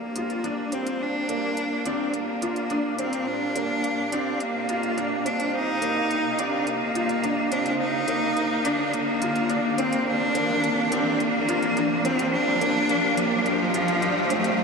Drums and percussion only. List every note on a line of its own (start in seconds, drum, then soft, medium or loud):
0.16 closed hi-hat medium
0.30 closed hi-hat soft
0.44 closed hi-hat soft
0.72 closed hi-hat medium
0.87 closed hi-hat soft
1.29 closed hi-hat medium
1.57 closed hi-hat soft
1.85 closed hi-hat medium
2.14 closed hi-hat soft
2.42 closed hi-hat medium
2.56 closed hi-hat soft
2.70 closed hi-hat soft
2.99 closed hi-hat medium
3.13 closed hi-hat soft
3.56 closed hi-hat medium
3.84 closed hi-hat soft
4.12 closed hi-hat medium
4.40 closed hi-hat soft
4.69 closed hi-hat medium
4.83 closed hi-hat soft
4.98 closed hi-hat soft
5.26 closed hi-hat medium
5.40 closed hi-hat soft
5.82 closed hi-hat medium
6.11 closed hi-hat soft
6.39 closed hi-hat medium
6.67 closed hi-hat soft
6.95 closed hi-hat medium
7.09 closed hi-hat soft
7.24 closed hi-hat soft
7.52 closed hi-hat medium
7.66 closed hi-hat soft
8.08 closed hi-hat medium
8.37 closed hi-hat soft
8.65 closed hi-hat medium
8.93 closed hi-hat soft
9.22 closed hi-hat medium
9.36 closed hi-hat soft
9.49 closed hi-hat soft
9.78 closed hi-hat medium
9.93 closed hi-hat soft
10.35 closed hi-hat medium
10.49 mid tom medium
10.64 closed hi-hat soft
10.92 closed hi-hat medium
11.20 closed hi-hat soft
11.49 closed hi-hat medium
11.62 closed hi-hat soft
11.77 closed hi-hat soft
12.05 closed hi-hat medium
12.19 closed hi-hat soft
12.47 mid tom medium
12.61 closed hi-hat medium
12.89 closed hi-hat soft
13.17 closed hi-hat medium
13.46 closed hi-hat soft
13.74 closed hi-hat medium
13.88 closed hi-hat soft
14.02 closed hi-hat soft
14.30 closed hi-hat medium
14.44 closed hi-hat soft